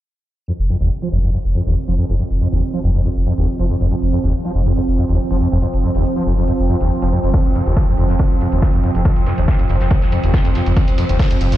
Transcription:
0.48 acid bass F2, ambient pad F3 C4, closed hi-hat
0.59 sub bass F1, closed hi-hat
0.69 acid bass F2
0.81 sub bass F1, acid bass D#2, closed hi-hat
0.91 closed hi-hat
1.02 acid bass F3, closed hi-hat
1.12 sub bass F1, acid bass F2
1.24 sub bass F1, acid bass F2, closed hi-hat
1.34 acid bass F2, closed hi-hat
1.45 sub bass F1, closed hi-hat
1.55 acid bass F2
1.66 sub bass F1, acid bass D#2, closed hi-hat
1.77 closed hi-hat
1.88 sub bass F1, acid bass F3, closed hi-hat
1.98 acid bass F2
2.09 sub bass F1, acid bass F2, closed hi-hat
2.19 acid bass F2, closed hi-hat
2.31 sub bass F1, closed hi-hat
2.41 acid bass F2
2.52 sub bass F1, acid bass D#2, closed hi-hat
2.62 closed hi-hat
2.74 acid bass F3, closed hi-hat
2.84 sub bass F1, acid bass F2
2.95 sub bass F1, acid bass F2, closed hi-hat
3.05 acid bass F2, closed hi-hat
3.16 sub bass F1, closed hi-hat
3.27 acid bass F2
3.38 sub bass F1, acid bass D#2, closed hi-hat
3.48 closed hi-hat
3.59 sub bass F1, acid bass F3, closed hi-hat
3.69 acid bass F2
3.81 sub bass F1, acid bass F2, closed hi-hat
3.91 acid bass F2, closed hi-hat
4.02 sub bass F1, closed hi-hat
4.12 acid bass F2
4.24 sub bass F1, acid bass D#2, closed hi-hat
4.34 closed hi-hat
4.45 acid bass F3, closed hi-hat
4.55 sub bass F1, acid bass F2
4.66 sub bass F1, acid bass F2, closed hi-hat
4.77 acid bass F2, closed hi-hat
4.88 sub bass F1, closed hi-hat
4.98 acid bass F2
5.09 sub bass F1, acid bass D#2, closed hi-hat
5.20 closed hi-hat
5.31 sub bass F1, acid bass F3, closed hi-hat
5.41 acid bass F2
5.52 sub bass F1, acid bass F2, closed hi-hat
5.62 acid bass F2, closed hi-hat
5.74 sub bass F1, closed hi-hat
5.84 acid bass F2
5.95 sub bass F1, acid bass D#2, closed hi-hat
6.05 closed hi-hat
6.16 acid bass F3, closed hi-hat
6.27 sub bass F1, acid bass F2
6.38 sub bass F1, acid bass F2, closed hi-hat
6.48 acid bass F2, closed hi-hat
6.59 sub bass F1, closed hi-hat
6.69 acid bass F2
6.81 sub bass F1, acid bass D#2, closed hi-hat
6.91 closed hi-hat
7.02 sub bass F1, acid bass F3, closed hi-hat
7.12 acid bass F2
7.24 sub bass F1, acid bass F2, closed hi-hat
7.34 acid bass F2, kick, closed hi-hat, ride
7.45 sub bass F1, closed hi-hat
7.55 acid bass F2, open hi-hat, ride
7.66 sub bass F1, acid bass D#2, closed hi-hat, ride
7.76 kick, snare, closed hi-hat, open hi-hat
7.88 acid bass F2, closed hi-hat
7.97 sub bass F1, acid bass F2, open hi-hat, ride
8.09 sub bass F1, acid bass F2, snare, closed hi-hat
8.19 acid bass F2, kick, closed hi-hat, ride
8.31 sub bass F1, closed hi-hat
8.41 acid bass F2, open hi-hat, ride
8.52 sub bass F1, acid bass D#2, closed hi-hat
8.62 kick, snare, closed hi-hat, ride
8.74 sub bass F1, acid bass F2, closed hi-hat
8.83 acid bass F2, open hi-hat, ride
8.95 sub bass F1, acid bass F2, closed hi-hat
9.05 acid bass F2, kick, closed hi-hat, ride
9.16 sub bass F1, closed hi-hat, ride
9.26 acid bass F2, snare, open hi-hat, ride
9.38 sub bass F1, acid bass D#2, closed hi-hat
9.48 kick, snare, closed hi-hat, ride
9.59 acid bass F2, closed hi-hat
9.69 sub bass F1, acid bass F2, open hi-hat, ride
9.80 sub bass F1, acid bass F2, snare, closed hi-hat
9.90 acid bass F2, kick, closed hi-hat, ride
10.02 sub bass F1, snare, closed hi-hat
10.12 acid bass F2, open hi-hat, ride
10.23 sub bass F1, acid bass D#2, closed hi-hat
10.34 kick, snare, closed hi-hat, ride
10.45 sub bass F1, acid bass F2, closed hi-hat
10.55 acid bass F2, snare, open hi-hat, ride
10.66 sub bass F1, acid bass F2, closed hi-hat
10.77 acid bass F2, kick, closed hi-hat, ride
10.88 sub bass F1, closed hi-hat
10.98 acid bass F2, open hi-hat, ride
11.09 sub bass F1, acid bass D#2, closed hi-hat, ride
11.19 kick, snare, closed hi-hat, open hi-hat
11.31 acid bass F2, closed hi-hat
11.41 sub bass F1, acid bass F2, open hi-hat, ride
11.52 sub bass F1, acid bass F2, snare, closed hi-hat

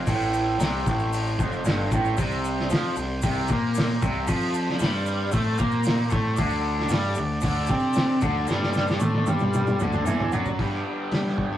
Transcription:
Already playing: transistor combo organ C4 C5
0.06 picked electric bass A1, overdriven electric guitar A2, transistor combo organ G4, kick, open hi-hat, shaker
0.20 shaker
0.33 shaker
0.59 picked electric bass C2, overdriven electric guitar C3, snare, open hi-hat, shaker
0.86 picked electric bass A1, overdriven electric guitar A2, kick, shaker
0.99 shaker
1.13 open hi-hat, shaker
1.27 shaker
1.39 picked electric bass F1, overdriven electric guitar F2, kick, shaker
1.52 shaker
1.64 picked electric bass G1, overdriven electric guitar G2, snare, open hi-hat, shaker
1.91 picked electric bass A1, overdriven electric guitar A2, kick, shaker
2.05 shaker
2.17 picked electric bass C2, overdriven electric guitar C3, kick, open hi-hat, shaker
2.31 shaker
2.45 shaker
2.60 snare
2.70 picked electric bass F2, overdriven electric guitar F3, snare, open hi-hat, shaker
2.96 picked electric bass C2, overdriven electric guitar C3, shaker
3.22 picked electric bass C2, overdriven electric guitar C3, kick, open hi-hat, shaker
3.48 picked electric bass A#2, overdriven electric guitar A#3, kick, shaker
3.74 snare, open hi-hat, shaker
4.02 picked electric bass C2, overdriven electric guitar C3, kick, shaker
4.27 picked electric bass F2, overdriven electric guitar F3, kick, open hi-hat, shaker
4.41 shaker
4.54 shaker
4.69 snare
4.79 picked electric bass G2, overdriven electric guitar G3, snare, open hi-hat, shaker
5.06 shaker
5.32 picked electric bass A2, overdriven electric guitar A3, kick, open hi-hat, shaker
5.58 picked electric bass A#2, overdriven electric guitar A#3, kick, shaker
5.71 shaker
5.83 snare, open hi-hat, shaker
6.10 picked electric bass A2, overdriven electric guitar A3, kick, shaker
6.36 picked electric bass D2, overdriven electric guitar D3, transistor combo organ D4 A4 D5, kick, open hi-hat, shaker
6.50 shaker
6.79 snare
6.89 picked electric bass G2, overdriven electric guitar G3, snare, open hi-hat, shaker
7.15 picked electric bass D2, overdriven electric guitar D3, shaker
7.41 picked electric bass D2, overdriven electric guitar D3, kick, open hi-hat, shaker
7.66 picked electric bass C3, overdriven electric guitar C4, kick, shaker
7.80 shaker
7.93 snare, open hi-hat, shaker
8.21 picked electric bass D2, overdriven electric guitar D3, kick, shaker
8.47 picked electric bass G2, overdriven electric guitar G3, transistor combo organ C5, snare, shaker
8.63 snare
8.73 snare, shaker
8.87 snare, shaker
9.00 picked electric bass A2, overdriven electric guitar A3, high tom, shaker
9.15 high tom
9.26 picked electric bass G2, overdriven electric guitar G3, high tom, shaker
9.39 mid tom, shaker
9.53 mid tom, shaker
9.67 mid tom, shaker
9.79 picked electric bass D2, overdriven electric guitar D3, mid tom, shaker
9.93 mid tom, shaker
10.05 picked electric bass E2, overdriven electric guitar E3, mid tom, shaker
10.20 floor tom
10.32 picked electric bass F#2, overdriven electric guitar F#3, floor tom, shaker
10.45 floor tom, shaker
10.59 overdriven electric guitar G2 D3 G3 B3 D4 G4, picked electric bass G2, transistor combo organ G4 B4 D5, kick, open hi-hat
11.12 picked electric bass G3, snare, open hi-hat
11.27 snare
11.38 kick
11.51 picked electric bass G2

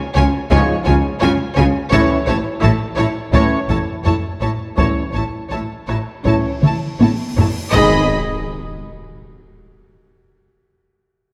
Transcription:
0.15 double bass section C#2, cello section C#3, viola section F4, violin section C#5 G#5
0.50 double bass section C#2, trombone section G#2 F3, cello section C#3, french horn section G#3 G#4, viola section F4, violin section C#5 G#5, trumpet section C#5, taiko
0.85 double bass section C#2, cello section C#3, viola section F4, violin section C#5 G#5, taiko low
1.20 double bass section C#2, cello section C#3, viola section F4, violin section C#5 G#5, taiko low
1.55 double bass section C#2, cello section C#3, viola section F4, violin section C#5 G#5
1.91 double bass section A1, trombone section A2 E3, cello section A2, french horn section C#4 E4, viola section E4, violin section C#5 A5, trumpet section C#5, taiko
2.27 double bass section A1, cello section A2, viola section E4, violin section C#5 A5
2.61 double bass section A1, cello section A2, viola section E4, violin section C#5 A5
2.96 double bass section A1, cello section A2, viola section E4, violin section C#5 A5
3.32 double bass section A1, cello section A2, trombone section A2 E3, french horn section C#4 E4, viola section E4, violin section C#5 A5, trumpet section C#5, taiko
3.69 double bass section A1, cello section A2, viola section E4, violin section C#5 A5, taiko low
4.04 double bass section A1, cello section A2, viola section E4, violin section C#5 A5, taiko low
4.41 double bass section A1, cello section A2, viola section E4, violin section C#5 A5
4.75 double bass section A1, trombone section A2 E3, french horn section C#4 E4, viola section E4, violin section C#5 A5, trumpet section C#5, taiko, cymbal swell
4.79 cello section A2
5.13 double bass section A1, cello section A2, viola section E4, violin section C#5 A5
5.50 double bass section A1, cello section A2, viola section E4, violin section C#5 A5
5.87 double bass section A1, cello section A2, viola section E4, violin section C#5 A5, taiko rim
6.23 double bass section A1, trombone section A2 E3, cello section A2, french horn section C#4 E4, viola section E4, trumpet section C#5, violin section C#5 A5, taiko
6.61 double bass section A1, cello section A2, viola section E4, violin section C#5 A5, taiko mid
6.99 double bass section A1, cello section A2, viola section E4, violin section C#5 A5, taiko high
7.36 double bass section A1, cello section A2, viola section E4, violin section C#5, taiko low
7.40 violin section A5
7.73 double bass section G#1, timpani G#2, cello section G#2, trombone section D#3 G#3, french horn section B3 D#4, viola section G#4, violin section D#5, trumpet section D#5, impact
7.77 violin section B5

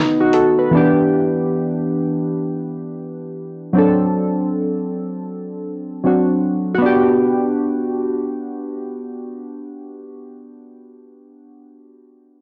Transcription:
Already playing: synth keys D#3 A3 B3 D#4
0.20 synth keys D#4 F#4
0.33 synth keys F#4 A4, closed hi-hat
0.59 synth keys B4
0.71 synth keys E3 B3 D4
0.77 synth keys G4
3.73 synth keys F#3 C4 D4
3.78 synth keys A4
6.04 synth keys F#3 C4 D4 F#4
6.74 synth keys B3 F#4
6.82 synth keys D4 G4

